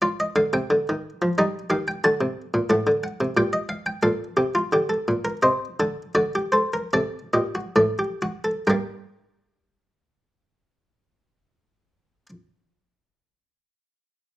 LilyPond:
<<
  \new Staff \with { instrumentName = "Harpsichord" } { \time 3/4 \key g \minor \tempo 4 = 80 << { d''16 ees''16 f''16 g''4~ g''16 ees''8 f''16 g''16 | a''4 fis''8 fis''8 g''16 ees''16 f''16 g''16 | f''2 ees''4 | d''8 c''8 d''8 ees''8 d''8 fis''8 |
<g bes g''>2.~ | <g bes g''>2. | } \\ { f'2 ees'8 g'8 | fis'4 a'4 g'4 | a'8 g'16 f'16 g'16 a'8 bes'16 c''8 a'8 | fis'16 g'16 a'16 bes'16 a'8 g'16 fis'16 a'16 g'16 fis'16 a'16 |
bes'2.~ | bes'2. | } >> }
  \new Staff \with { instrumentName = "Harpsichord" } { \clef bass \time 3/4 \key g \minor r8 d16 c16 d16 ees8 f16 g8 ees8 | d16 c8 bes,16 a,16 d8 c16 bes,4 | bes,8 c8 d8 bes,8 c8 d8 | d4 c8 bes,8 a,4 |
g,2.~ | g,2. | }
>>